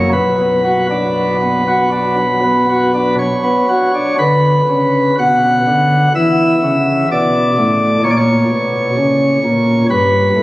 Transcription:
0.13 3.15 B1 medium
0.13 3.15 B2 soft
0.13 3.15 B4 medium
0.39 0.61 B3 soft
0.64 0.87 F#4 soft
0.91 1.35 D4 soft
1.42 1.64 B3 soft
1.68 1.89 F#4 soft
1.92 2.14 D4 soft
2.18 2.40 F#3 soft
2.44 2.66 B3 soft
2.69 2.91 F#4 soft
2.94 3.15 D4 soft
3.19 4.16 C#5 medium
3.44 3.66 B3 soft
3.69 3.91 F#4 soft
3.95 4.15 D4 soft
4.19 4.61 D3 medium
4.19 5.15 B4 medium
4.69 5.11 C#3 medium
5.19 5.60 B2 medium
5.19 6.12 F#5 loud
5.67 6.08 D3 medium
6.15 6.56 E3 medium
6.15 7.08 E5 loud
6.63 7.04 C#3 medium
7.12 7.51 B2 medium
7.12 8.02 D5 medium
7.58 7.97 A2 medium
8.04 8.44 A#2 medium
8.04 8.10 C#5 loud
8.11 8.16 D5 medium
8.17 9.86 C#5 loud
8.50 8.90 B2 medium
8.97 9.37 C#3 medium
9.44 9.83 A#2 medium
9.90 10.29 G2 medium
9.90 10.43 B4 medium
10.36 10.43 A2 medium

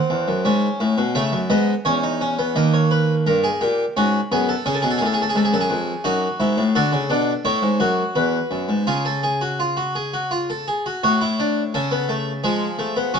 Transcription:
0.00 0.43 C4 medium
0.00 1.12 F#5 medium
0.10 0.27 E2 medium
0.28 0.44 F#2 medium
0.45 0.67 G#2 loud
0.45 1.13 C#4 medium
0.80 0.97 A2 medium
0.98 1.15 B2 loud
1.15 1.32 C#3 medium
1.15 1.37 A3 medium
1.15 1.37 E5 medium
1.32 1.50 F#2 medium
1.50 1.72 G#2 medium
1.50 1.72 B3 medium
1.50 1.72 D#5 medium
1.85 2.54 E2 medium
1.85 2.03 C#4 medium
1.85 2.55 C#5 medium
2.03 2.21 D#4 medium
2.21 2.39 C#4 medium
2.39 2.56 B3 medium
2.56 3.25 D#2 medium
2.56 3.93 A#3 medium
2.56 2.73 D#5 medium
2.74 2.91 C#5 medium
2.91 3.13 B4 medium
3.27 3.48 G2 medium
3.27 3.44 A#4 medium
3.44 3.61 G#4 medium
3.61 3.83 A#2 medium
3.61 3.83 G4 medium
3.97 4.19 G#2 medium
3.97 4.18 C#4 medium
3.97 4.18 F#4 medium
4.32 4.53 F#2 medium
4.32 4.53 B3 medium
4.32 4.49 G#4 medium
4.49 4.66 A4 medium
4.66 4.83 C#3 medium
4.66 6.01 C#4 medium
4.66 4.74 G#4 medium
4.75 4.82 A4 medium
4.82 5.00 B2 medium
4.82 4.90 G#4 medium
4.90 4.98 A4 medium
4.98 5.23 A2 medium
4.98 5.06 G#4 medium
5.06 5.13 A4 medium
5.14 5.22 G#4 medium
5.22 5.29 A4 medium
5.29 5.37 G#4 medium
5.35 5.52 G#2 medium
5.35 5.45 A4 medium
5.45 5.53 G#4 medium
5.53 5.70 F#2 medium
5.53 5.61 A4 medium
5.61 6.03 G#4 medium
5.70 5.91 F2 medium
6.04 6.26 F#2 medium
6.04 6.26 D#4 medium
6.04 6.72 F#4 medium
6.40 6.57 G#2 medium
6.40 6.61 E4 medium
6.57 6.74 A2 medium
6.75 6.92 D3 loud
6.75 6.97 F#4 medium
6.75 7.43 A4 medium
6.93 7.09 C#3 medium
7.10 7.31 B2 medium
7.10 7.32 D4 medium
7.45 7.62 A2 medium
7.45 7.66 E4 medium
7.45 8.12 C#5 medium
7.62 7.79 G#2 medium
7.80 8.01 F#2 medium
7.80 8.83 F#4 medium
8.15 8.37 E2 medium
8.15 8.85 B4 medium
8.51 8.68 F#2 medium
8.69 8.86 G#2 medium
8.87 10.64 C#3 medium
8.87 9.04 F4 medium
8.87 9.22 G#4 medium
9.05 9.23 A4 medium
9.23 9.41 G#4 medium
9.41 9.59 F#4 medium
9.60 9.77 F4 medium
9.77 9.95 F#4 medium
9.95 10.13 G#4 medium
10.14 10.31 F#4 medium
10.31 10.49 F4 medium
10.50 10.67 A4 medium
10.68 10.85 G#4 medium
10.86 11.02 F#4 medium
11.03 11.72 A2 medium
11.03 11.20 F#4 medium
11.03 11.72 C#5 medium
11.21 11.38 E4 medium
11.40 11.61 D4 medium
11.74 12.42 C#3 medium
11.74 11.91 C#4 medium
11.74 12.42 A4 medium
11.92 12.09 B3 medium
12.09 12.31 A3 medium
12.44 13.11 F3 medium
12.44 12.66 G#3 medium
12.44 13.11 G#4 medium
12.79 12.96 A3 medium
12.96 13.13 B3 medium
13.14 13.20 F#3 medium
13.14 13.20 C#4 medium
13.14 13.20 F#4 medium

